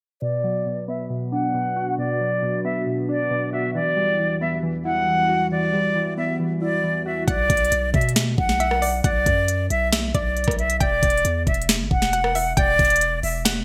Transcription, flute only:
0.22 0.84 D5 loud
0.88 1.06 E5 medium
1.32 1.94 F#5 medium
1.98 2.61 D5 loud
2.64 2.83 E5 medium
3.09 3.50 D5 medium
3.53 3.71 E5 medium
3.75 4.37 D5 loud
4.41 4.59 E5 medium
4.85 5.47 F#5 medium
5.51 6.14 D5 loud
6.18 6.36 E5 medium
6.61 7.03 D5 medium
7.06 7.24 E5 medium
7.28 7.90 D5 loud
7.94 8.12 E5 medium
8.38 9.00 F#5 medium
9.04 9.66 D5 loud
9.70 9.88 E5 medium
10.15 10.56 D5 medium
10.59 10.77 E5 medium
10.81 11.43 D5 loud
11.47 11.65 E5 medium
11.91 12.53 F#5 medium
12.57 13.19 D5 loud
13.23 13.42 E5 medium

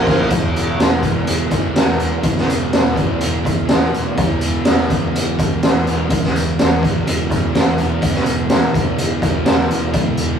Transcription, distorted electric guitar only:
0.00 0.31 A#2 medium
0.00 0.32 F3 medium
0.00 0.32 A#3 medium
0.29 1.24 E2 medium
0.29 1.05 B2 medium
0.33 1.01 E3 loud
1.02 1.30 E3 medium
1.06 1.27 B2 medium
1.25 1.74 E2 medium
1.25 1.53 B2 medium
1.30 1.48 E3 medium
1.49 1.79 E3 medium
1.54 1.76 B2 soft
1.75 2.22 E2 medium
1.75 2.02 B2 medium
1.80 1.98 E3 medium
1.98 2.27 E3 medium
2.03 2.24 B2 soft
2.23 3.19 E2 medium
2.23 3.00 B2 medium
2.27 2.95 E3 loud
2.96 3.25 E3 medium
3.01 3.21 B2 medium
3.20 3.66 E2 medium
3.20 3.48 B2 medium
3.25 3.43 E3 loud
3.44 3.71 E3 medium
3.49 3.68 B2 medium
3.66 4.16 E2 medium
3.66 3.95 B2 medium
3.71 3.91 E3 medium
3.92 4.21 E3 medium
3.96 4.18 B2 medium
4.16 5.15 E2 medium
4.16 4.93 B2 loud
4.21 4.89 E3 loud
4.89 5.19 E3 medium
4.94 5.17 B2 medium
5.15 5.62 E2 medium
5.15 5.43 B2 medium
5.19 5.38 E3 loud
5.39 5.67 E3 medium
5.44 5.63 B2 medium
5.62 6.09 E2 medium
5.62 5.91 B2 medium
5.67 5.87 E3 medium
5.88 6.15 E3 medium
5.92 6.11 B2 medium
6.09 7.06 E2 medium
6.09 6.85 B2 loud
6.15 6.82 E3 loud
6.82 7.10 E3 medium
6.86 7.08 B2 medium
7.06 7.53 E2 medium
7.06 7.35 B2 medium
7.11 7.31 E3 medium
7.31 7.58 E3 medium
7.36 7.55 B2 medium
7.53 8.01 E2 medium
7.53 7.83 B2 medium
7.58 7.79 E3 medium
7.79 8.06 E3 medium
7.84 8.03 B2 medium
8.02 8.97 E2 loud
8.02 8.78 B2 loud
8.07 8.73 E3 medium
8.73 9.02 E3 medium
8.79 8.98 B2 medium
8.97 9.44 E2 medium
8.97 9.24 B2 medium
9.02 9.20 E3 loud
9.21 9.49 E3 medium
9.25 9.46 B2 medium
9.45 9.93 E2 medium
9.45 9.72 B2 medium
9.49 9.69 E3 medium
9.69 9.98 E3 medium
9.74 9.95 B2 medium
9.94 10.39 E2 medium
9.94 10.39 B2 loud
9.99 10.39 E3 loud

